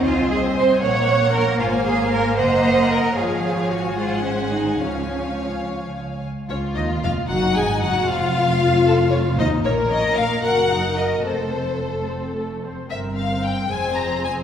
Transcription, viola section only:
\new Staff \with { instrumentName = "Viola section" } { \time 6/8 \key des \major \tempo 4. = 76 c'4. bes4.~ | bes2. | f4. aes4. | f2~ f16 r8. |
\key f \phrygian des'8 ees'8 f'8 ges'8 aes'8 ges'8 | f'2~ f'8 ees'8 | <bes bes'>8 <des' des''>8 <bes bes'>8 <ges' bes'>8 <ees' ges'>8 <ges' bes'>8 | <a a'>8 <c' c''>8 <a a'>8 <c' c''>8 <a a'>8 <c' c''>8 |
<c' bes'>4. <c' aes'>4. | }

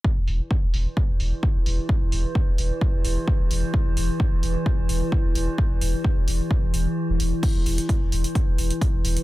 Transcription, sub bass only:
\new Staff \with { instrumentName = "Sub bass" } { \clef bass \time 4/4 \key c \lydian \tempo 4 = 130 r16 e,,16 e,,16 r8 e,,16 e,,16 r8 e,,16 e,,16 r8 e,,16 e,,16 r16 | r16 e,,16 e,,16 r8 e,,16 e,,16 r8 e,,16 e,,16 r8 e,,16 e,,16 r16 | r16 e,,16 e,,16 r8 e,,16 e,,16 r8 e,,16 e,,16 r8 e,,16 e,,16 r16 | r16 e,,16 e,,16 r8 e,,16 e,,16 r8 e,,16 e,,16 r8 e,,16 e,,16 r16 |
r16 e,,16 e,,16 r8 e,,16 e,,16 r8 e,,16 e,,16 r8 e,,16 e,,16 r16 | }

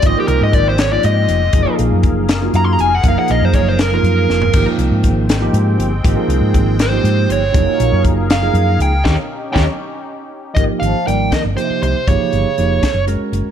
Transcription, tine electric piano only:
\new Staff \with { instrumentName = "Tine electric piano" } { \time 6/8 \key aes \major \tempo 4. = 80 << { r2. | r2. | r2. | r2. |
r2. | r2. | <des' ees' g'>8 r8 <des' ees' g'>8 r4. | r2. |
r2 bes''4 | } \\ { <f bes ees' f'>16 <f bes ees' bes'>4~ <f bes ees' bes'>16 r16 <f bes ees' f'>4 r16 | <f bes ees' aes'>16 <f bes ees' aes'>4~ <f bes ees' aes'>16 r16 <bes ees' f' ges'>4 r16 | <f bes ees' bes'>16 <f bes ees' aes'>4~ <f bes ees' aes'>16 r16 <f bes ees' f'>4 r16 | <f bes ees' g'>16 <f bes ees' bes'>4~ <f bes ees' bes'>16 r16 <f bes ees' g'>4 r16 |
<f bes ees' g'>16 <f bes ees' aes'>4~ <f bes ees' aes'>16 r16 <f bes ees' g'>4 r16 | <f bes ees' aes'>16 <bes ees' f' ges'>4~ <bes ees' f' ges'>16 r16 <f bes ees' aes'>4 r16 | r2. | <f bes ees' g'>8. r16 <f bes ees' bes'>8. r16 <f bes ees' g'>8. r16 |
<f bes ees' g'>8. r16 <f bes ees' g'>8 r8 <aes des' ges' bes'>8. r16 | } >> }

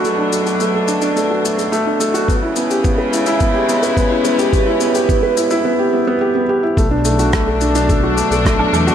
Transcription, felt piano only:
\new Staff \with { instrumentName = "Felt piano" } { \time 4/4 \key b \minor \tempo 4 = 107 a16 d'16 a16 fis'16 a16 a'16 d'16 d'16 a16 fis'16 a16 a'16 a16 d'16 a16 fis'16 | b16 e'16 b16 g'16 b16 b'16 e'16 e'16 b16 g'16 b16 b'16 b16 e'16 b16 g'16 | b16 e'16 b16 g'16 b16 b'16 e'16 e'16 b16 g'16 b16 b16 g'16 b16 g'16 e'16 | a16 d'16 a16 fis'16 a16 a'16 d'16 d'16 a16 fis'16 a16 a'16 a16 d'16 a16 fis'16 | }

